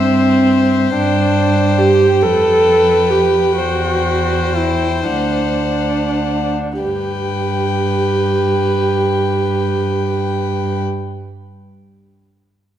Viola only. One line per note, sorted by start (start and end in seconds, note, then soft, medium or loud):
0.00 0.95 C4 medium
0.96 1.80 D4 medium
1.79 2.24 G4 medium
2.22 3.12 A4 medium
3.10 3.56 G4 medium
3.56 4.58 F#4 medium
4.57 5.09 E4 medium
5.10 6.78 D4 medium
6.82 10.81 G4 soft